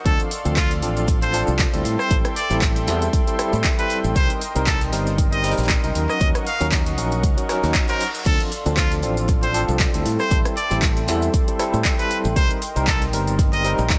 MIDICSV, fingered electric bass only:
0, 0, Header, 1, 2, 480
1, 0, Start_track
1, 0, Tempo, 512821
1, 52, Time_signature, 4, 2, 24, 8
1, 13090, End_track
2, 0, Start_track
2, 0, Title_t, "Fingered electric bass"
2, 0, Program_c, 0, 33
2, 52, Note_on_c, 0, 38, 98
2, 149, Note_off_c, 0, 38, 0
2, 425, Note_on_c, 0, 38, 91
2, 772, Note_off_c, 0, 38, 0
2, 772, Note_on_c, 0, 33, 100
2, 1327, Note_off_c, 0, 33, 0
2, 1385, Note_on_c, 0, 36, 99
2, 1553, Note_off_c, 0, 36, 0
2, 1625, Note_on_c, 0, 38, 86
2, 1703, Note_off_c, 0, 38, 0
2, 1732, Note_on_c, 0, 45, 84
2, 1829, Note_off_c, 0, 45, 0
2, 1972, Note_on_c, 0, 33, 101
2, 2069, Note_off_c, 0, 33, 0
2, 2344, Note_on_c, 0, 33, 93
2, 2692, Note_off_c, 0, 33, 0
2, 2692, Note_on_c, 0, 40, 103
2, 2874, Note_off_c, 0, 40, 0
2, 3304, Note_on_c, 0, 45, 89
2, 3383, Note_off_c, 0, 45, 0
2, 3784, Note_on_c, 0, 33, 100
2, 3863, Note_off_c, 0, 33, 0
2, 3892, Note_on_c, 0, 36, 103
2, 3989, Note_off_c, 0, 36, 0
2, 4265, Note_on_c, 0, 36, 90
2, 4612, Note_off_c, 0, 36, 0
2, 4612, Note_on_c, 0, 31, 104
2, 5168, Note_off_c, 0, 31, 0
2, 5225, Note_on_c, 0, 34, 102
2, 5393, Note_off_c, 0, 34, 0
2, 5464, Note_on_c, 0, 36, 86
2, 5543, Note_off_c, 0, 36, 0
2, 5572, Note_on_c, 0, 39, 83
2, 5669, Note_off_c, 0, 39, 0
2, 5812, Note_on_c, 0, 39, 101
2, 5909, Note_off_c, 0, 39, 0
2, 6184, Note_on_c, 0, 39, 92
2, 6532, Note_off_c, 0, 39, 0
2, 6532, Note_on_c, 0, 34, 101
2, 6772, Note_off_c, 0, 34, 0
2, 6772, Note_on_c, 0, 37, 77
2, 6869, Note_off_c, 0, 37, 0
2, 7145, Note_on_c, 0, 39, 81
2, 7223, Note_off_c, 0, 39, 0
2, 7732, Note_on_c, 0, 38, 98
2, 7829, Note_off_c, 0, 38, 0
2, 8105, Note_on_c, 0, 38, 89
2, 8452, Note_off_c, 0, 38, 0
2, 8452, Note_on_c, 0, 33, 100
2, 9008, Note_off_c, 0, 33, 0
2, 9065, Note_on_c, 0, 36, 100
2, 9234, Note_off_c, 0, 36, 0
2, 9305, Note_on_c, 0, 38, 88
2, 9383, Note_off_c, 0, 38, 0
2, 9412, Note_on_c, 0, 45, 85
2, 9509, Note_off_c, 0, 45, 0
2, 9652, Note_on_c, 0, 33, 99
2, 9749, Note_off_c, 0, 33, 0
2, 10025, Note_on_c, 0, 33, 93
2, 10372, Note_off_c, 0, 33, 0
2, 10372, Note_on_c, 0, 40, 103
2, 10554, Note_off_c, 0, 40, 0
2, 10984, Note_on_c, 0, 45, 87
2, 11063, Note_off_c, 0, 45, 0
2, 11464, Note_on_c, 0, 33, 103
2, 11543, Note_off_c, 0, 33, 0
2, 11572, Note_on_c, 0, 36, 101
2, 11669, Note_off_c, 0, 36, 0
2, 11944, Note_on_c, 0, 36, 93
2, 12292, Note_off_c, 0, 36, 0
2, 12292, Note_on_c, 0, 31, 101
2, 12847, Note_off_c, 0, 31, 0
2, 12904, Note_on_c, 0, 34, 102
2, 13073, Note_off_c, 0, 34, 0
2, 13090, End_track
0, 0, End_of_file